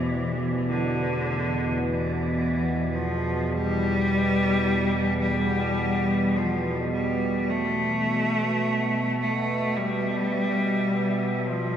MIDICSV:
0, 0, Header, 1, 5, 480
1, 0, Start_track
1, 0, Tempo, 1125704
1, 1251, Time_signature, 4, 2, 24, 8
1, 1730, Tempo, 1140684
1, 4975, End_track
2, 0, Start_track
2, 0, Title_t, "Synth texture"
2, 0, Program_c, 0, 99
2, 0, Note_on_c, 0, 74, 75
2, 3172, Note_on_c, 0, 76, 76
2, 3190, Note_off_c, 0, 74, 0
2, 4975, Note_off_c, 0, 76, 0
2, 4975, End_track
3, 0, Start_track
3, 0, Title_t, "Analog synth pad"
3, 0, Program_c, 1, 89
3, 0, Note_on_c, 1, 57, 63
3, 0, Note_on_c, 1, 62, 68
3, 0, Note_on_c, 1, 64, 72
3, 0, Note_on_c, 1, 67, 74
3, 0, Note_on_c, 1, 72, 69
3, 3176, Note_off_c, 1, 57, 0
3, 3176, Note_off_c, 1, 67, 0
3, 3177, Note_off_c, 1, 64, 0
3, 3178, Note_off_c, 1, 62, 0
3, 3181, Note_off_c, 1, 72, 0
3, 4975, End_track
4, 0, Start_track
4, 0, Title_t, "Cello"
4, 0, Program_c, 2, 42
4, 0, Note_on_c, 2, 52, 89
4, 302, Note_on_c, 2, 50, 82
4, 308, Note_off_c, 2, 52, 0
4, 779, Note_on_c, 2, 52, 86
4, 786, Note_off_c, 2, 50, 0
4, 1258, Note_on_c, 2, 53, 90
4, 1265, Note_off_c, 2, 52, 0
4, 1502, Note_on_c, 2, 55, 114
4, 1508, Note_off_c, 2, 53, 0
4, 2211, Note_off_c, 2, 55, 0
4, 2213, Note_on_c, 2, 55, 98
4, 2698, Note_on_c, 2, 53, 78
4, 2704, Note_off_c, 2, 55, 0
4, 2937, Note_off_c, 2, 53, 0
4, 2940, Note_on_c, 2, 55, 74
4, 3178, Note_on_c, 2, 57, 87
4, 3185, Note_off_c, 2, 55, 0
4, 3896, Note_off_c, 2, 57, 0
4, 3898, Note_on_c, 2, 57, 79
4, 4135, Note_on_c, 2, 55, 83
4, 4141, Note_off_c, 2, 57, 0
4, 4851, Note_on_c, 2, 53, 81
4, 4858, Note_off_c, 2, 55, 0
4, 4975, Note_off_c, 2, 53, 0
4, 4975, End_track
5, 0, Start_track
5, 0, Title_t, "Synth drone"
5, 0, Program_c, 3, 95
5, 0, Note_on_c, 3, 40, 63
5, 0, Note_on_c, 3, 47, 62
5, 3162, Note_off_c, 3, 47, 0
5, 3167, Note_on_c, 3, 47, 72
5, 3227, Note_off_c, 3, 40, 0
5, 4975, Note_off_c, 3, 47, 0
5, 4975, End_track
0, 0, End_of_file